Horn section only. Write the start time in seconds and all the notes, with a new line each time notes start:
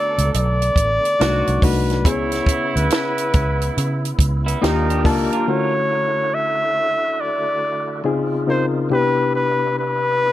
Already playing: F#3 D4 A4
1.20 D#3 C4 F#4
2.05 C#3 B3 E4
4.62 A#2 G3 D#4